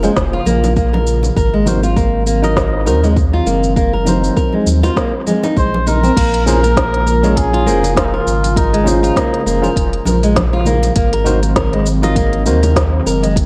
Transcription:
Already playing: C#3 F3 G#3 A#3 F4
0.03 G#3 C#4 F4 G#4 C5, muted conga, shaker
0.16 F1, kick, snare, shaker
0.33 F4
0.45 A#1 A#3, high conga, shaker
0.64 muted conga, shaker
0.76 A#3, kick, shaker
0.93 A#4, muted conga
1.07 shaker
1.23 muted conga, shaker
1.36 G#1 D#3 F#3 G#3 C4 A#4, kick, shaker
1.53 G#3
1.66 D#4 F#4 A#4 C5, high conga, low conga, shaker
1.83 F4, shaker
1.96 A#3, kick, shaker
2.26 A#3, shaker
2.42 F#3 D#4 A#4 D#5, muted conga, shaker
2.57 kick, snare, shaker
2.85 D#2 D#4 F#4 A#4 C5, muted conga, shaker
3.03 G#3, low conga, shaker
3.16 kick, shaker
3.33 F4
3.46 F#1 A#3, shaker
3.63 high conga, shaker
3.76 A#3, kick, shaker
3.93 A#4
4.05 F#3 D#4 A#4 C5, high conga, low conga, shaker
4.24 shaker
4.37 A#4, kick, shaker
4.53 G#3, high conga
4.66 D#2, high conga, shaker
4.83 D#4 F4 F#4 A#4 C5, muted conga, shaker
4.96 A#3, kick, snare, shaker
5.26 G#3, high conga, shaker
5.43 D#4, muted conga, shaker
5.57 A#1 G#3 C5, kick, shaker
5.74 muted conga
5.87 D#4 A#4, low conga, shaker
6.03 C4, muted conga, shaker
6.16 A#1 C#3 F3 G#3 A#3 F4, kick, closed hi-hat, crash, shaker
6.34 closed hi-hat
6.46 A#3 C#4 F4 G#4 A#4 C5, low conga, shaker
6.63 A#4, closed hi-hat, shaker
6.77 kick, snare, closed hi-hat, shaker
6.94 closed hi-hat
7.06 A#4, shaker
7.23 G#3 C#4 F4 G#4 C#5, muted conga, shaker
7.37 G#4, kick, closed hi-hat, high conga, shaker
7.53 F4, closed hi-hat, muted conga
7.66 F1 A#3 C#4 F4 G#4 C5, shaker
7.83 closed hi-hat, low conga, shaker
7.96 A#3 F4, kick, snare, closed hi-hat, shaker
8.05 D#4
8.13 F4 A#4
8.27 G#1, shaker
8.44 closed hi-hat, high conga, shaker
8.56 D#4 A#4 C5, kick, closed hi-hat, shaker
8.73 G#3, closed hi-hat
8.84 C#4 F4 G#4, low conga, shaker
8.88 C5
9.03 F4, closed hi-hat, shaker
9.16 A#3, kick, snare, closed hi-hat, shaker
9.34 closed hi-hat
9.46 F1 A#3, shaker
9.62 C#4 F4 G#4 A#4 C5, muted conga, shaker
9.76 F1, kick, closed hi-hat, shaker
9.93 closed hi-hat
10.05 A#1 A#4, high conga, shaker
10.23 G#3, closed hi-hat, shaker
10.36 kick, snare, closed hi-hat, high conga, shaker
10.53 F4
10.65 A#3, low conga, shaker
10.83 closed hi-hat, muted conga, shaker
10.96 G#1 D#3 F#3 G#3 A#3 C4, kick, closed hi-hat, shaker
11.13 A#4, closed hi-hat
11.24 D#4 F#4 A#4 C5, low conga, shaker
11.43 closed hi-hat, shaker
11.56 A#4, kick, snare, closed hi-hat, shaker
11.73 G#3, closed hi-hat
11.86 shaker
12.02 F#3 D#4 F4 A#4 D#5, muted conga, shaker
12.16 A#3, kick, closed hi-hat, high conga, shaker
12.33 closed hi-hat, muted conga
12.45 D#2 A#3 D#4 F#4 A#4 C5, shaker
12.63 A#4, closed hi-hat, low conga, shaker
12.76 kick, snare, closed hi-hat, shaker
13.06 F#1 A#4, shaker
13.23 G#3, closed hi-hat, high conga, shaker
13.36 kick, closed hi-hat, shaker

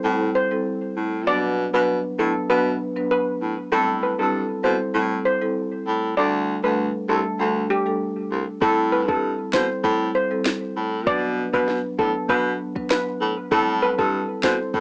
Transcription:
0.04 A2 G3 C4 E4 A4
0.35 C5
0.51 G3 C4 E4 A4
0.96 A2
1.27 B2 F#3 B3 D4 B4 D5
1.74 B2 F#3 B3 D4 B4
2.19 A2 F#3 B3 D4 A4 B4
2.49 B2 F#3 B3 D4 B4
2.96 F#3 B3 D4 B4
3.11 B4
3.41 A2
3.72 A2 G3 C4 E4 A4
4.03 B4
4.19 G2 G3 C4 E4 A4
4.64 B2 G3 C4 E4 A4 C5
4.94 A2 G3 C4 E4 A4
5.25 C5
5.41 G3 C4 E4 A4
5.86 A2
6.17 D2 G3 A3 D4 A4 D5
6.64 D2 G3 A3 D4 A4 B4
7.09 C2 G3 A3 D4 A4
7.39 D2 G3 A3 D4 A4
7.70 G4
7.86 G3 A3 D4 A4
8.31 C2
8.62 A2 G3 C4 E4 A4, kick
8.93 B4
9.08 G2 G3 C4 E4 A4, kick
9.53 B2 G3 C4 E4 A4 C5, finger snap, kick, snare
9.84 A2 G3 C4 E4 A4, kick
10.15 C5
10.31 G3 C4 E4 A4
10.46 finger snap, snare
10.76 A2
11.06 B2 F#3 B3 D4 B4 D5, kick
11.53 B2 F#3 B3 D4 B4, kick
11.68 snare
11.98 A2 F#3 B3 D4 A4 B4, kick
12.29 B2 F#3 B3 D4 B4, kick
12.76 F#3 B3 D4 B4, kick
12.90 B4, finger snap, snare
13.21 A2
13.51 A2 G3 C4 E4 A4, kick
13.82 B4
13.98 G2 G3 C4 E4 A4, kick
14.43 B2 G3 C4 E4 A4 C5, finger snap, kick, snare
14.74 A2 G3 C4 E4 A4, kick

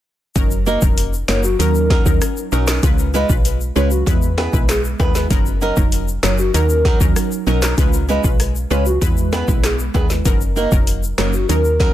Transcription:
0.35 F#1 F#3 C#4 D#4 A#4, kick, closed hi-hat, shaker
0.51 shaker
0.66 A#3 D#4 F#4 A#4 D#5, shaker
0.82 F1 F#3 C#4 D#4 A#4, kick, shaker
0.98 closed hi-hat, shaker
1.13 shaker
1.28 F#1 F#3 A#3 C#4 D#4 F#4 A#4 C#5, snare, clap, shaker
1.44 F#4, shaker
1.59 D#2 F#3 C#4 D#4 A#4, closed hi-hat, shaker
1.75 shaker
1.90 F#3 C#4 D#4 A#4, kick, snare
2.06 D#2 F#3 C#4 D#4 A#4, kick, shaker
2.22 cross-stick, closed hi-hat, shaker
2.37 shaker
2.52 B1 F#3 C#4 D#4 A#4, shaker
2.67 F#3 C#4 D#4 A#4, snare, clap, shaker
2.83 C#2 G#3 C#4 F4 B4, kick, closed hi-hat, shaker
2.98 shaker
3.14 G#3 C#4 F4 B4 D#5, shaker
3.29 B1 G#3 C#4 F4 B4, kick, shaker
3.45 closed hi-hat, shaker
3.61 shaker
3.76 C#2 G#3 C#4 F4 B4 C#5, shaker
3.91 F#4, shaker
4.06 E2 G#3 B3 E4 B4, kick, closed hi-hat, shaker
4.22 shaker
4.37 B3 E4 G#4 B4, snare, high timbale
4.53 B1 G#3 B3 E4 B4, kick, shaker
4.68 G#4, cross-stick, snare, clap, closed hi-hat, shaker
4.84 shaker
4.99 D#2 G#3 B3 E4 G#4 B4, kick, high timbale, shaker
5.15 B3 E4 G#4 B4, snare, shaker
5.30 F#1 F#3 C#4 D#4 A#4, kick, closed hi-hat, shaker
5.46 shaker
5.61 F#3 C#4 D#4 A#4 D#5, shaker
5.77 F1 F#3 C#4 D#4 A#4, kick, shaker
5.92 closed hi-hat, shaker
6.08 shaker
6.23 F#1 F#3 C#4 D#4 A#4 C#5, snare, clap, shaker
6.38 F#4, shaker
6.54 D#2 F#3 C#4 D#4 A#4, closed hi-hat, shaker
6.69 shaker
6.85 F#3 C#4 D#4 A#4, kick, snare
7.01 D#2 F#3 C#4 D#4 A#4, kick, shaker
7.16 cross-stick, closed hi-hat, shaker
7.32 shaker
7.47 B1 F#3 C#4 D#4 A#4, shaker
7.62 F#3 C#4 D#4 A#4, snare, clap, shaker
7.78 C#2 G#3 C#4 F4 B4, kick, closed hi-hat, shaker
7.93 shaker
8.09 G#3 C#4 F4 B4 D#5, shaker
8.24 B1 G#3 C#4 F4 B4, kick, shaker
8.40 cross-stick, closed hi-hat, shaker
8.55 shaker
8.70 C#2 G#3 C#4 F4 B4 C#5, shaker
8.86 F#4, shaker
9.01 E2 G#3 B3 E4 B4, kick, closed hi-hat, shaker
9.17 shaker
9.32 B3 E4 G#4 B4, snare, high timbale, shaker
9.48 B1 G#3 B3 E4 B4, kick, shaker
9.64 G#4, cross-stick, snare, clap, closed hi-hat, shaker
9.79 shaker
9.94 D#2 G#3 B3 E4 G#4 B4, kick, high timbale, shaker
10.10 muted nylon-string guitar stroke, snare, shaker
10.25 F#1 F#3 C#4 D#4 A#4, kick, closed hi-hat, shaker
10.41 shaker
10.56 A#3 D#4 F#4 A#4 D#5, shaker
10.72 F1 F#3 C#4 D#4 A#4, kick, shaker
10.87 closed hi-hat, shaker
11.03 shaker
11.18 F#1 F#3 A#3 C#4 D#4 F#4 A#4 C#5, snare, clap, shaker
11.33 F#4, shaker
11.49 D#2 F#3 C#4 D#4 A#4, closed hi-hat, shaker
11.65 shaker
11.80 F#3 C#4 D#4 A#4, kick, snare

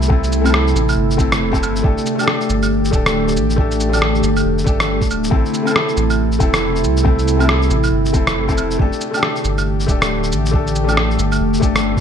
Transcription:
Already playing: C2 C3 A3 C4 E4 A4
0.02 shaker
0.08 A3 C4 E4, kick
0.12 A4
0.24 cabasa, shaker
0.32 cabasa
0.41 A3 C4
0.46 E4 A4, claves, shaker
0.54 cross-stick
0.67 shaker
0.75 A1, cabasa
0.89 claves, shaker
0.97 G1
1.11 shaker
1.17 A3 C4 E4 A4, kick, cabasa
1.32 cross-stick, shaker
1.40 E1
1.52 A3 C4 E4 A4, kick, shaker
1.63 G1, cabasa, claves
1.76 shaker
1.82 G1 D3 A3 D4 G4 A4, kick
1.98 shaker
2.06 cabasa
2.15 A3 D4, claves, shaker
2.21 G4 A4
2.28 cross-stick
2.41 shaker
2.50 G1, cabasa
2.63 claves, shaker
2.85 shaker
2.91 D1 A3 D4 G4, kick, cabasa
2.95 A4
3.06 cross-stick, shaker
3.28 shaker
3.37 A1, cabasa
3.50 shaker
3.56 A3 D4 G4, kick
3.60 A4
3.71 cabasa, shaker
3.80 cabasa
3.89 A3 D4
3.93 G4 A4, claves, shaker
4.02 cross-stick
4.15 shaker
4.23 G1, cabasa
4.37 claves, shaker
4.45 F1
4.58 shaker
4.64 G1 A3 D4 G4, kick, cabasa
4.68 A4
4.80 cross-stick, shaker
5.02 kick, shaker
5.10 D1, cabasa, claves
5.24 shaker
5.30 A1 C3 A3 C4 E4 A4, kick
5.45 shaker
5.54 cabasa
5.63 A3 C4
5.67 E4 A4, claves, shaker
5.76 cross-stick
5.89 shaker
5.97 A1, cabasa
6.10 claves, shaker
6.32 shaker
6.39 E1 A3 C4 E4 A4, kick, cabasa
6.54 cross-stick, shaker
6.76 shaker
6.84 C2, cabasa
6.97 shaker
7.03 A3 C4 E4 A4, kick
7.19 cabasa, shaker
7.28 cabasa
7.37 A3 C4, claves, shaker
7.42 E4 A4
7.49 cross-stick
7.62 shaker
7.70 A1, cabasa
7.84 claves, shaker
7.92 G1
8.05 shaker
8.13 E1 A3 C4 E4 A4, kick, cabasa
8.27 cross-stick, shaker
8.36 G1
8.47 A3 C4 E4, kick, shaker
8.52 A4
8.58 E1, cabasa, claves
8.71 shaker
8.78 G1 D3 A3 D4 G4 A4, kick
8.92 shaker
9.01 cabasa
9.11 A3 D4, claves, shaker
9.16 G4 A4
9.23 cross-stick
9.36 shaker
9.44 G1, cabasa
9.58 claves, shaker
9.80 shaker
9.86 D1 A3 D4 G4, kick, cabasa
9.90 A4
10.02 cross-stick, shaker
10.24 shaker
10.32 A1, cabasa
10.46 shaker
10.51 A3 D4 G4 A4, kick
10.67 cabasa, shaker
10.75 cabasa
10.84 A3 D4
10.89 G4 A4, claves, shaker
10.97 cross-stick
11.11 shaker
11.19 G1, cabasa
11.32 claves, shaker
11.40 F1
11.54 shaker
11.60 G1 A3 D4 G4 A4, kick, cabasa
11.76 cross-stick, shaker
11.97 kick

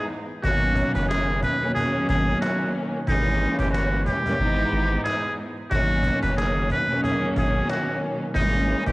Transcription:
Already playing: G#2 E3 G#3 B3 D#4
0.10 cajon slap
0.29 cajon slap
0.44 G#1 B2 D#3 F#3 A#3 C#4 F#4, cajon bass
0.75 cajon bass
0.95 F#1 B4, cajon bass
1.09 G#4, cajon slap
1.43 B4, cajon bass
1.61 B2 D#3 F#3 A#3 C#4, cajon slap
1.74 G#4, cajon bass
2.09 G#1 G#4, cajon bass
2.41 F#4, cajon slap
2.93 cajon slap
3.07 G#1 E3 G3 G#3 A#3 C#4 D#4, cajon bass
3.59 G1 G4, cajon bass
3.71 F#4, cajon slap
4.06 G4, cajon bass
4.25 G#2 E3 G3 A#3 C#4, cajon bass
4.39 G#1 G#2 E3 G#3 B3 D#4, cajon slap
4.71 G#1, cajon slap
5.04 G#4, cajon slap
5.38 cajon slap
5.56 cajon slap
5.71 G#1 B2 D#3 F#3 A#3 C#4 F#4, cajon bass
6.03 cajon bass
6.22 F#1 B4, cajon bass
6.37 G#4, cajon slap
6.70 B4, cajon bass
6.88 B2 D#3 F#3 A#3 C#4, cajon slap
7.03 G#4, cajon bass
7.36 G#1 G#4, cajon bass
7.69 F#4, cajon slap
8.20 cajon slap
8.34 G#1 E3 G3 G#3 A#3 C#4 D#4, cajon bass
8.68 cajon slap
8.86 G1 G4, cajon bass

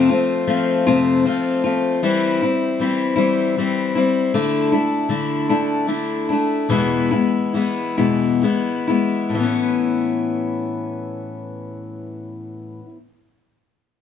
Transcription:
0.09 F3 A3 C4 F4
0.47 F3 A3 C4 F4
0.87 F2 C3 F3 A3 C4 F4
1.25 F3 A3 C4 F4
1.64 F3 A3 C4 F4
2.03 E3 G3 C4 E4
2.42 G3 C4 E4
2.80 E3 G3 C4 E4
3.16 E3 G3 C4 E4
3.57 E3 G3 C4 E4
3.95 G3 C4 E4
4.34 D3 A3 D4 E4
4.72 A3 D4 E4
5.09 D3 A3 D4 E4
5.49 D3 A3 D4 E4
5.87 D3 A3 D4 E4
6.29 A3 D4 E4
6.69 E2 B2 E3 G#3 B3 E4
7.11 E3 G#3 B3 E4
7.54 E3 G#3 B3 E4
7.97 E2 B2 E3 G#3 B3 E4
8.42 E3 G#3 B3 E4
8.88 E3 G#3 B3 E4
9.29 A2
9.35 E3 B3
9.43 C#4 E4

